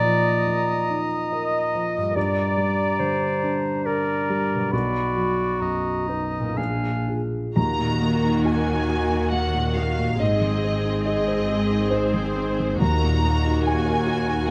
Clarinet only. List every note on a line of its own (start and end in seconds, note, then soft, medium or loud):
0.00 1.01 D5 medium
1.31 2.17 D#5 medium
2.15 3.01 D5 medium
3.00 3.87 C5 medium
3.86 4.72 A#4 medium
4.73 6.10 F#4 medium
6.08 6.58 D#4 medium
6.57 7.56 D4 soft